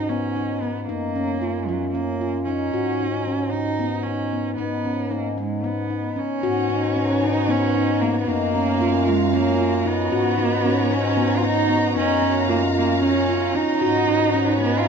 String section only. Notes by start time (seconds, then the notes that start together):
6.42 F#4 B4 C#5 A#5
8.28 F5
10.10 B4 C#5
11.97 F5
13.82 B4 C#5